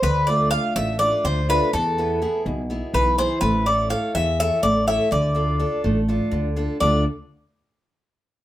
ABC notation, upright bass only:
X:1
M:7/8
L:1/8
Q:1/4=124
K:none
V:1 name="Upright bass" clef=bass
D,,3 A,,,2 D,,2 | E,,3 B,,,2 B,,,2 | A,,,3 E,,2 A,,,2 | D,,3 A,,,2 D,,2 |
D,, z6 |]